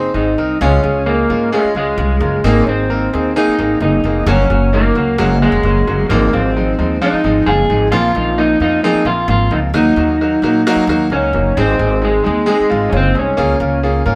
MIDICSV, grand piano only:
0, 0, Header, 1, 2, 480
1, 0, Start_track
1, 0, Key_signature, -5, "major"
1, 0, Tempo, 456274
1, 640, Time_signature, 4, 2, 24, 8
1, 14887, End_track
2, 0, Start_track
2, 0, Title_t, "Grand piano"
2, 0, Program_c, 0, 0
2, 158, Note_on_c, 0, 60, 72
2, 160, Note_on_c, 0, 68, 85
2, 163, Note_on_c, 0, 63, 67
2, 337, Note_off_c, 0, 60, 0
2, 339, Note_off_c, 0, 68, 0
2, 340, Note_off_c, 0, 63, 0
2, 398, Note_on_c, 0, 63, 74
2, 401, Note_on_c, 0, 70, 85
2, 402, Note_on_c, 0, 60, 77
2, 578, Note_off_c, 0, 63, 0
2, 580, Note_off_c, 0, 60, 0
2, 580, Note_off_c, 0, 70, 0
2, 646, Note_on_c, 0, 61, 97
2, 646, Note_on_c, 0, 65, 95
2, 647, Note_on_c, 0, 56, 107
2, 648, Note_on_c, 0, 68, 97
2, 823, Note_off_c, 0, 61, 0
2, 824, Note_off_c, 0, 56, 0
2, 824, Note_off_c, 0, 65, 0
2, 824, Note_off_c, 0, 68, 0
2, 873, Note_on_c, 0, 68, 85
2, 875, Note_on_c, 0, 61, 63
2, 876, Note_on_c, 0, 56, 74
2, 877, Note_on_c, 0, 65, 73
2, 1058, Note_off_c, 0, 61, 0
2, 1058, Note_off_c, 0, 68, 0
2, 1059, Note_off_c, 0, 56, 0
2, 1059, Note_off_c, 0, 65, 0
2, 1114, Note_on_c, 0, 56, 67
2, 1114, Note_on_c, 0, 65, 64
2, 1116, Note_on_c, 0, 61, 61
2, 1116, Note_on_c, 0, 68, 80
2, 1299, Note_off_c, 0, 56, 0
2, 1299, Note_off_c, 0, 65, 0
2, 1300, Note_off_c, 0, 61, 0
2, 1300, Note_off_c, 0, 68, 0
2, 1363, Note_on_c, 0, 56, 74
2, 1364, Note_on_c, 0, 61, 70
2, 1365, Note_on_c, 0, 65, 69
2, 1368, Note_on_c, 0, 70, 89
2, 1544, Note_off_c, 0, 56, 0
2, 1544, Note_off_c, 0, 61, 0
2, 1545, Note_off_c, 0, 65, 0
2, 1547, Note_off_c, 0, 70, 0
2, 1603, Note_on_c, 0, 61, 94
2, 1605, Note_on_c, 0, 68, 107
2, 1606, Note_on_c, 0, 56, 101
2, 1607, Note_on_c, 0, 65, 90
2, 1785, Note_off_c, 0, 61, 0
2, 1786, Note_off_c, 0, 56, 0
2, 1786, Note_off_c, 0, 68, 0
2, 1787, Note_off_c, 0, 65, 0
2, 1850, Note_on_c, 0, 61, 66
2, 1852, Note_on_c, 0, 68, 87
2, 1853, Note_on_c, 0, 65, 74
2, 1854, Note_on_c, 0, 56, 77
2, 2028, Note_off_c, 0, 61, 0
2, 2030, Note_off_c, 0, 65, 0
2, 2030, Note_off_c, 0, 68, 0
2, 2031, Note_off_c, 0, 56, 0
2, 2088, Note_on_c, 0, 65, 68
2, 2092, Note_on_c, 0, 56, 72
2, 2092, Note_on_c, 0, 61, 58
2, 2093, Note_on_c, 0, 68, 76
2, 2268, Note_off_c, 0, 65, 0
2, 2270, Note_off_c, 0, 56, 0
2, 2270, Note_off_c, 0, 61, 0
2, 2271, Note_off_c, 0, 68, 0
2, 2323, Note_on_c, 0, 56, 73
2, 2326, Note_on_c, 0, 70, 68
2, 2327, Note_on_c, 0, 61, 60
2, 2329, Note_on_c, 0, 65, 72
2, 2506, Note_off_c, 0, 56, 0
2, 2507, Note_off_c, 0, 70, 0
2, 2508, Note_off_c, 0, 61, 0
2, 2509, Note_off_c, 0, 65, 0
2, 2570, Note_on_c, 0, 60, 102
2, 2573, Note_on_c, 0, 58, 104
2, 2573, Note_on_c, 0, 68, 115
2, 2574, Note_on_c, 0, 63, 95
2, 2750, Note_off_c, 0, 60, 0
2, 2751, Note_off_c, 0, 58, 0
2, 2752, Note_off_c, 0, 63, 0
2, 2752, Note_off_c, 0, 68, 0
2, 2813, Note_on_c, 0, 60, 62
2, 2814, Note_on_c, 0, 58, 68
2, 2815, Note_on_c, 0, 63, 68
2, 2817, Note_on_c, 0, 68, 70
2, 2992, Note_off_c, 0, 58, 0
2, 2992, Note_off_c, 0, 60, 0
2, 2993, Note_off_c, 0, 63, 0
2, 2994, Note_off_c, 0, 68, 0
2, 3049, Note_on_c, 0, 58, 68
2, 3050, Note_on_c, 0, 60, 66
2, 3051, Note_on_c, 0, 63, 68
2, 3051, Note_on_c, 0, 70, 85
2, 3230, Note_off_c, 0, 58, 0
2, 3230, Note_off_c, 0, 60, 0
2, 3231, Note_off_c, 0, 63, 0
2, 3231, Note_off_c, 0, 70, 0
2, 3295, Note_on_c, 0, 60, 60
2, 3296, Note_on_c, 0, 58, 73
2, 3298, Note_on_c, 0, 63, 71
2, 3298, Note_on_c, 0, 68, 88
2, 3473, Note_off_c, 0, 60, 0
2, 3474, Note_off_c, 0, 58, 0
2, 3475, Note_off_c, 0, 63, 0
2, 3475, Note_off_c, 0, 68, 0
2, 3536, Note_on_c, 0, 58, 106
2, 3536, Note_on_c, 0, 63, 94
2, 3537, Note_on_c, 0, 68, 127
2, 3538, Note_on_c, 0, 60, 87
2, 3714, Note_off_c, 0, 58, 0
2, 3714, Note_off_c, 0, 63, 0
2, 3715, Note_off_c, 0, 60, 0
2, 3715, Note_off_c, 0, 68, 0
2, 3779, Note_on_c, 0, 60, 70
2, 3779, Note_on_c, 0, 68, 88
2, 3781, Note_on_c, 0, 63, 67
2, 3782, Note_on_c, 0, 58, 82
2, 3956, Note_off_c, 0, 60, 0
2, 3956, Note_off_c, 0, 68, 0
2, 3957, Note_off_c, 0, 63, 0
2, 3958, Note_off_c, 0, 58, 0
2, 4017, Note_on_c, 0, 60, 68
2, 4020, Note_on_c, 0, 63, 74
2, 4021, Note_on_c, 0, 58, 67
2, 4024, Note_on_c, 0, 68, 78
2, 4195, Note_off_c, 0, 60, 0
2, 4197, Note_off_c, 0, 58, 0
2, 4197, Note_off_c, 0, 63, 0
2, 4199, Note_off_c, 0, 68, 0
2, 4260, Note_on_c, 0, 68, 74
2, 4263, Note_on_c, 0, 58, 80
2, 4263, Note_on_c, 0, 63, 66
2, 4264, Note_on_c, 0, 60, 61
2, 4437, Note_off_c, 0, 68, 0
2, 4438, Note_off_c, 0, 58, 0
2, 4438, Note_off_c, 0, 63, 0
2, 4439, Note_off_c, 0, 60, 0
2, 4494, Note_on_c, 0, 54, 96
2, 4495, Note_on_c, 0, 61, 94
2, 4496, Note_on_c, 0, 66, 108
2, 4497, Note_on_c, 0, 58, 92
2, 4674, Note_off_c, 0, 54, 0
2, 4674, Note_off_c, 0, 61, 0
2, 4675, Note_off_c, 0, 66, 0
2, 4676, Note_off_c, 0, 58, 0
2, 4734, Note_on_c, 0, 54, 65
2, 4735, Note_on_c, 0, 58, 64
2, 4737, Note_on_c, 0, 61, 69
2, 4737, Note_on_c, 0, 66, 79
2, 4914, Note_off_c, 0, 54, 0
2, 4914, Note_off_c, 0, 58, 0
2, 4916, Note_off_c, 0, 61, 0
2, 4916, Note_off_c, 0, 66, 0
2, 4974, Note_on_c, 0, 63, 88
2, 4975, Note_on_c, 0, 58, 68
2, 4976, Note_on_c, 0, 54, 83
2, 4980, Note_on_c, 0, 61, 71
2, 5154, Note_off_c, 0, 63, 0
2, 5155, Note_off_c, 0, 54, 0
2, 5155, Note_off_c, 0, 58, 0
2, 5157, Note_off_c, 0, 61, 0
2, 5217, Note_on_c, 0, 61, 65
2, 5217, Note_on_c, 0, 66, 75
2, 5219, Note_on_c, 0, 54, 71
2, 5220, Note_on_c, 0, 58, 67
2, 5395, Note_off_c, 0, 61, 0
2, 5396, Note_off_c, 0, 54, 0
2, 5396, Note_off_c, 0, 66, 0
2, 5397, Note_off_c, 0, 58, 0
2, 5453, Note_on_c, 0, 54, 99
2, 5453, Note_on_c, 0, 66, 112
2, 5457, Note_on_c, 0, 58, 97
2, 5460, Note_on_c, 0, 61, 98
2, 5634, Note_off_c, 0, 54, 0
2, 5634, Note_off_c, 0, 66, 0
2, 5636, Note_off_c, 0, 58, 0
2, 5637, Note_off_c, 0, 61, 0
2, 5701, Note_on_c, 0, 61, 67
2, 5702, Note_on_c, 0, 54, 69
2, 5704, Note_on_c, 0, 66, 91
2, 5706, Note_on_c, 0, 58, 64
2, 5878, Note_off_c, 0, 54, 0
2, 5878, Note_off_c, 0, 61, 0
2, 5879, Note_off_c, 0, 66, 0
2, 5880, Note_off_c, 0, 58, 0
2, 5939, Note_on_c, 0, 61, 69
2, 5941, Note_on_c, 0, 54, 70
2, 5941, Note_on_c, 0, 58, 65
2, 5943, Note_on_c, 0, 66, 80
2, 6117, Note_off_c, 0, 61, 0
2, 6118, Note_off_c, 0, 54, 0
2, 6118, Note_off_c, 0, 58, 0
2, 6119, Note_off_c, 0, 66, 0
2, 6178, Note_on_c, 0, 54, 66
2, 6179, Note_on_c, 0, 61, 68
2, 6179, Note_on_c, 0, 66, 80
2, 6181, Note_on_c, 0, 58, 64
2, 6356, Note_off_c, 0, 54, 0
2, 6357, Note_off_c, 0, 61, 0
2, 6357, Note_off_c, 0, 66, 0
2, 6358, Note_off_c, 0, 58, 0
2, 6425, Note_on_c, 0, 53, 95
2, 6425, Note_on_c, 0, 60, 91
2, 6426, Note_on_c, 0, 56, 96
2, 6426, Note_on_c, 0, 63, 105
2, 6600, Note_off_c, 0, 53, 0
2, 6600, Note_off_c, 0, 56, 0
2, 6600, Note_off_c, 0, 60, 0
2, 6600, Note_off_c, 0, 63, 0
2, 6656, Note_on_c, 0, 53, 68
2, 6658, Note_on_c, 0, 65, 84
2, 6661, Note_on_c, 0, 56, 69
2, 6662, Note_on_c, 0, 60, 74
2, 6835, Note_off_c, 0, 53, 0
2, 6836, Note_off_c, 0, 65, 0
2, 6837, Note_off_c, 0, 56, 0
2, 6838, Note_off_c, 0, 60, 0
2, 6905, Note_on_c, 0, 53, 65
2, 6906, Note_on_c, 0, 56, 66
2, 6907, Note_on_c, 0, 60, 59
2, 6907, Note_on_c, 0, 63, 82
2, 7079, Note_off_c, 0, 53, 0
2, 7080, Note_off_c, 0, 56, 0
2, 7080, Note_off_c, 0, 60, 0
2, 7081, Note_off_c, 0, 63, 0
2, 7139, Note_on_c, 0, 63, 85
2, 7142, Note_on_c, 0, 53, 66
2, 7142, Note_on_c, 0, 60, 69
2, 7143, Note_on_c, 0, 56, 69
2, 7316, Note_off_c, 0, 63, 0
2, 7318, Note_off_c, 0, 53, 0
2, 7318, Note_off_c, 0, 56, 0
2, 7318, Note_off_c, 0, 60, 0
2, 7380, Note_on_c, 0, 65, 101
2, 7381, Note_on_c, 0, 53, 106
2, 7381, Note_on_c, 0, 60, 85
2, 7384, Note_on_c, 0, 56, 84
2, 7557, Note_off_c, 0, 53, 0
2, 7557, Note_off_c, 0, 60, 0
2, 7557, Note_off_c, 0, 65, 0
2, 7558, Note_off_c, 0, 56, 0
2, 7620, Note_on_c, 0, 56, 78
2, 7622, Note_on_c, 0, 53, 82
2, 7623, Note_on_c, 0, 60, 65
2, 7624, Note_on_c, 0, 63, 85
2, 7796, Note_off_c, 0, 56, 0
2, 7797, Note_off_c, 0, 53, 0
2, 7798, Note_off_c, 0, 60, 0
2, 7799, Note_off_c, 0, 63, 0
2, 7860, Note_on_c, 0, 56, 62
2, 7861, Note_on_c, 0, 60, 69
2, 7861, Note_on_c, 0, 65, 85
2, 7862, Note_on_c, 0, 53, 74
2, 8036, Note_off_c, 0, 56, 0
2, 8037, Note_off_c, 0, 53, 0
2, 8037, Note_off_c, 0, 60, 0
2, 8037, Note_off_c, 0, 65, 0
2, 8097, Note_on_c, 0, 53, 68
2, 8097, Note_on_c, 0, 56, 68
2, 8099, Note_on_c, 0, 63, 79
2, 8100, Note_on_c, 0, 60, 63
2, 8274, Note_off_c, 0, 53, 0
2, 8275, Note_off_c, 0, 56, 0
2, 8275, Note_off_c, 0, 63, 0
2, 8276, Note_off_c, 0, 60, 0
2, 8336, Note_on_c, 0, 60, 81
2, 8336, Note_on_c, 0, 65, 111
2, 8339, Note_on_c, 0, 58, 92
2, 8343, Note_on_c, 0, 53, 103
2, 8514, Note_off_c, 0, 60, 0
2, 8514, Note_off_c, 0, 65, 0
2, 8515, Note_off_c, 0, 58, 0
2, 8517, Note_off_c, 0, 53, 0
2, 8580, Note_on_c, 0, 60, 62
2, 8581, Note_on_c, 0, 53, 71
2, 8583, Note_on_c, 0, 58, 69
2, 8584, Note_on_c, 0, 63, 76
2, 8755, Note_off_c, 0, 60, 0
2, 8756, Note_off_c, 0, 53, 0
2, 8757, Note_off_c, 0, 58, 0
2, 8757, Note_off_c, 0, 63, 0
2, 8819, Note_on_c, 0, 58, 70
2, 8821, Note_on_c, 0, 63, 84
2, 8826, Note_on_c, 0, 53, 71
2, 8826, Note_on_c, 0, 60, 58
2, 8995, Note_off_c, 0, 58, 0
2, 8996, Note_off_c, 0, 63, 0
2, 8998, Note_off_c, 0, 53, 0
2, 8998, Note_off_c, 0, 60, 0
2, 9060, Note_on_c, 0, 58, 63
2, 9061, Note_on_c, 0, 60, 71
2, 9062, Note_on_c, 0, 53, 74
2, 9062, Note_on_c, 0, 65, 84
2, 9235, Note_off_c, 0, 58, 0
2, 9235, Note_off_c, 0, 60, 0
2, 9236, Note_off_c, 0, 53, 0
2, 9236, Note_off_c, 0, 65, 0
2, 9300, Note_on_c, 0, 53, 97
2, 9300, Note_on_c, 0, 60, 93
2, 9301, Note_on_c, 0, 68, 122
2, 9302, Note_on_c, 0, 58, 103
2, 9474, Note_off_c, 0, 53, 0
2, 9475, Note_off_c, 0, 60, 0
2, 9475, Note_off_c, 0, 68, 0
2, 9476, Note_off_c, 0, 58, 0
2, 9526, Note_on_c, 0, 60, 66
2, 9530, Note_on_c, 0, 53, 70
2, 9531, Note_on_c, 0, 58, 72
2, 9531, Note_on_c, 0, 65, 82
2, 9707, Note_off_c, 0, 60, 0
2, 9709, Note_off_c, 0, 53, 0
2, 9710, Note_off_c, 0, 58, 0
2, 9710, Note_off_c, 0, 65, 0
2, 9766, Note_on_c, 0, 53, 69
2, 9770, Note_on_c, 0, 60, 72
2, 9772, Note_on_c, 0, 58, 69
2, 9775, Note_on_c, 0, 65, 70
2, 9947, Note_off_c, 0, 53, 0
2, 9948, Note_off_c, 0, 60, 0
2, 9950, Note_off_c, 0, 58, 0
2, 9951, Note_off_c, 0, 65, 0
2, 10008, Note_on_c, 0, 60, 68
2, 10010, Note_on_c, 0, 58, 60
2, 10011, Note_on_c, 0, 53, 66
2, 10016, Note_on_c, 0, 65, 71
2, 10187, Note_off_c, 0, 60, 0
2, 10188, Note_off_c, 0, 58, 0
2, 10189, Note_off_c, 0, 53, 0
2, 10191, Note_off_c, 0, 65, 0
2, 10247, Note_on_c, 0, 54, 104
2, 10247, Note_on_c, 0, 63, 89
2, 10249, Note_on_c, 0, 66, 109
2, 10250, Note_on_c, 0, 58, 82
2, 10426, Note_off_c, 0, 54, 0
2, 10426, Note_off_c, 0, 63, 0
2, 10427, Note_off_c, 0, 66, 0
2, 10428, Note_off_c, 0, 58, 0
2, 10491, Note_on_c, 0, 66, 91
2, 10493, Note_on_c, 0, 63, 67
2, 10495, Note_on_c, 0, 58, 66
2, 10496, Note_on_c, 0, 54, 76
2, 10668, Note_off_c, 0, 66, 0
2, 10669, Note_off_c, 0, 63, 0
2, 10670, Note_off_c, 0, 54, 0
2, 10670, Note_off_c, 0, 58, 0
2, 10741, Note_on_c, 0, 63, 67
2, 10743, Note_on_c, 0, 58, 72
2, 10744, Note_on_c, 0, 66, 87
2, 10747, Note_on_c, 0, 54, 77
2, 10912, Note_off_c, 0, 63, 0
2, 10914, Note_off_c, 0, 58, 0
2, 10914, Note_off_c, 0, 66, 0
2, 10916, Note_off_c, 0, 54, 0
2, 10976, Note_on_c, 0, 66, 98
2, 10978, Note_on_c, 0, 54, 94
2, 10978, Note_on_c, 0, 63, 86
2, 10982, Note_on_c, 0, 58, 85
2, 11150, Note_off_c, 0, 66, 0
2, 11151, Note_off_c, 0, 54, 0
2, 11151, Note_off_c, 0, 63, 0
2, 11153, Note_off_c, 0, 58, 0
2, 11222, Note_on_c, 0, 54, 127
2, 11223, Note_on_c, 0, 58, 110
2, 11223, Note_on_c, 0, 66, 126
2, 11224, Note_on_c, 0, 63, 114
2, 11392, Note_off_c, 0, 54, 0
2, 11393, Note_off_c, 0, 58, 0
2, 11393, Note_off_c, 0, 63, 0
2, 11393, Note_off_c, 0, 66, 0
2, 11455, Note_on_c, 0, 63, 85
2, 11456, Note_on_c, 0, 58, 84
2, 11457, Note_on_c, 0, 54, 94
2, 11459, Note_on_c, 0, 66, 107
2, 11628, Note_off_c, 0, 63, 0
2, 11629, Note_off_c, 0, 54, 0
2, 11629, Note_off_c, 0, 58, 0
2, 11631, Note_off_c, 0, 66, 0
2, 11693, Note_on_c, 0, 54, 71
2, 11694, Note_on_c, 0, 58, 74
2, 11697, Note_on_c, 0, 63, 68
2, 11698, Note_on_c, 0, 66, 85
2, 11867, Note_off_c, 0, 54, 0
2, 11868, Note_off_c, 0, 58, 0
2, 11869, Note_off_c, 0, 63, 0
2, 11869, Note_off_c, 0, 66, 0
2, 11933, Note_on_c, 0, 63, 62
2, 11935, Note_on_c, 0, 54, 68
2, 11935, Note_on_c, 0, 58, 68
2, 11935, Note_on_c, 0, 66, 74
2, 12107, Note_off_c, 0, 54, 0
2, 12107, Note_off_c, 0, 63, 0
2, 12107, Note_off_c, 0, 66, 0
2, 12108, Note_off_c, 0, 58, 0
2, 12170, Note_on_c, 0, 56, 91
2, 12171, Note_on_c, 0, 63, 90
2, 12173, Note_on_c, 0, 60, 90
2, 12173, Note_on_c, 0, 68, 111
2, 12345, Note_off_c, 0, 56, 0
2, 12345, Note_off_c, 0, 63, 0
2, 12346, Note_off_c, 0, 60, 0
2, 12346, Note_off_c, 0, 68, 0
2, 12402, Note_on_c, 0, 60, 65
2, 12403, Note_on_c, 0, 63, 71
2, 12405, Note_on_c, 0, 56, 75
2, 12409, Note_on_c, 0, 68, 92
2, 12580, Note_off_c, 0, 60, 0
2, 12581, Note_off_c, 0, 63, 0
2, 12582, Note_off_c, 0, 56, 0
2, 12584, Note_off_c, 0, 68, 0
2, 12641, Note_on_c, 0, 56, 75
2, 12641, Note_on_c, 0, 60, 68
2, 12644, Note_on_c, 0, 63, 66
2, 12645, Note_on_c, 0, 68, 77
2, 12819, Note_off_c, 0, 56, 0
2, 12819, Note_off_c, 0, 60, 0
2, 12821, Note_off_c, 0, 63, 0
2, 12821, Note_off_c, 0, 68, 0
2, 12874, Note_on_c, 0, 63, 72
2, 12878, Note_on_c, 0, 68, 82
2, 12879, Note_on_c, 0, 56, 80
2, 12880, Note_on_c, 0, 60, 68
2, 13056, Note_off_c, 0, 63, 0
2, 13058, Note_off_c, 0, 56, 0
2, 13058, Note_off_c, 0, 60, 0
2, 13058, Note_off_c, 0, 68, 0
2, 13109, Note_on_c, 0, 56, 103
2, 13110, Note_on_c, 0, 60, 88
2, 13110, Note_on_c, 0, 63, 92
2, 13114, Note_on_c, 0, 68, 123
2, 13293, Note_off_c, 0, 56, 0
2, 13293, Note_off_c, 0, 63, 0
2, 13294, Note_off_c, 0, 60, 0
2, 13295, Note_off_c, 0, 68, 0
2, 13354, Note_on_c, 0, 56, 74
2, 13355, Note_on_c, 0, 60, 71
2, 13357, Note_on_c, 0, 63, 65
2, 13358, Note_on_c, 0, 65, 91
2, 13535, Note_off_c, 0, 56, 0
2, 13536, Note_off_c, 0, 60, 0
2, 13536, Note_off_c, 0, 63, 0
2, 13537, Note_off_c, 0, 65, 0
2, 13599, Note_on_c, 0, 56, 71
2, 13599, Note_on_c, 0, 63, 60
2, 13600, Note_on_c, 0, 60, 71
2, 13602, Note_on_c, 0, 65, 80
2, 13777, Note_off_c, 0, 56, 0
2, 13777, Note_off_c, 0, 63, 0
2, 13778, Note_off_c, 0, 60, 0
2, 13779, Note_off_c, 0, 65, 0
2, 13832, Note_on_c, 0, 56, 72
2, 13833, Note_on_c, 0, 60, 67
2, 13833, Note_on_c, 0, 68, 81
2, 13835, Note_on_c, 0, 63, 56
2, 14014, Note_off_c, 0, 56, 0
2, 14014, Note_off_c, 0, 60, 0
2, 14014, Note_off_c, 0, 68, 0
2, 14015, Note_off_c, 0, 63, 0
2, 14065, Note_on_c, 0, 61, 91
2, 14067, Note_on_c, 0, 58, 102
2, 14070, Note_on_c, 0, 68, 106
2, 14071, Note_on_c, 0, 65, 90
2, 14250, Note_off_c, 0, 61, 0
2, 14251, Note_off_c, 0, 58, 0
2, 14252, Note_off_c, 0, 68, 0
2, 14253, Note_off_c, 0, 65, 0
2, 14308, Note_on_c, 0, 70, 79
2, 14310, Note_on_c, 0, 58, 68
2, 14312, Note_on_c, 0, 61, 63
2, 14312, Note_on_c, 0, 65, 66
2, 14491, Note_off_c, 0, 70, 0
2, 14492, Note_off_c, 0, 58, 0
2, 14493, Note_off_c, 0, 61, 0
2, 14493, Note_off_c, 0, 65, 0
2, 14552, Note_on_c, 0, 58, 83
2, 14553, Note_on_c, 0, 65, 74
2, 14553, Note_on_c, 0, 68, 96
2, 14555, Note_on_c, 0, 61, 81
2, 14733, Note_off_c, 0, 58, 0
2, 14734, Note_off_c, 0, 65, 0
2, 14734, Note_off_c, 0, 68, 0
2, 14735, Note_off_c, 0, 61, 0
2, 14787, Note_on_c, 0, 58, 79
2, 14788, Note_on_c, 0, 70, 92
2, 14790, Note_on_c, 0, 61, 80
2, 14792, Note_on_c, 0, 65, 80
2, 14887, Note_off_c, 0, 58, 0
2, 14887, Note_off_c, 0, 61, 0
2, 14887, Note_off_c, 0, 65, 0
2, 14887, Note_off_c, 0, 70, 0
2, 14887, End_track
0, 0, End_of_file